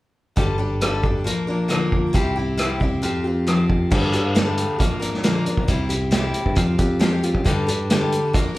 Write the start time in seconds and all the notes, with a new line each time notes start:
0.36 G1 G2 D3 G3 D4 G4 A4, kick, closed hi-hat
0.58 G3 D4 G4 A4
0.81 G2 D3 G3 D4 G4 A4, cross-stick, closed hi-hat
1.03 G3 D4 G4 A4, kick
1.24 A#1 F3 A#3 D4 A#4, closed hi-hat
1.47 F3 A#3 D4 A#4
1.68 A#2 D3 F3 A#3 D4 A#4, cross-stick, closed hi-hat
1.92 kick
2.13 C2 C3 G3 C4 E4 G4, kick, closed hi-hat
2.36 C4 E4 G4
2.57 C3 G3 C4 E4 G4, cross-stick, closed hi-hat
2.80 C4 E4 G4, kick
3.02 F2 F3 C4 F4 G4, closed hi-hat
3.24 C4 F4 G4
3.47 F3 C4 F4 G4, cross-stick, closed hi-hat
3.70 kick
3.90 G2 D3 G3 D4 G4 A4, kick, crash
4.12 G3 D4 G4 A4, closed hi-hat
4.35 G2 D3 G3 D4 G4 A4, snare, closed hi-hat
4.58 closed hi-hat
4.79 A#1 F3 A#3 D4 A#4, kick, closed hi-hat
5.00 F3 A#3 D4 A#4, closed hi-hat
5.14 snare
5.23 A#2 D3 F3 A#3 D4 A#4, snare, closed hi-hat
5.46 F3 A#3 D4 A#4, closed hi-hat
5.57 B1, kick
5.68 C2 C3 G3 C4 E4 G4, kick, closed hi-hat
5.89 C4 E4 G4, closed hi-hat
6.11 C3 G3 C4 E4 G4, snare, closed hi-hat
6.34 closed hi-hat
6.46 G2, kick
6.55 F2 F3 C4 F4 G4, kick, closed hi-hat
6.78 F2 C4 F4 G4, kick, closed hi-hat
6.99 F3 C4 F4 G4, snare, closed hi-hat
7.23 C4 F4 G4, closed hi-hat
7.35 F#2, kick
7.44 G2 D3 G3 D4 G4 A4, kick, closed hi-hat
7.67 G3 D4 G4 A4, closed hi-hat
7.90 G2 D3 G3 D4 G4 A4, snare, closed hi-hat
8.12 closed hi-hat
8.33 A#1 F3 A#3 D4 A#4, kick, closed hi-hat
8.55 A#4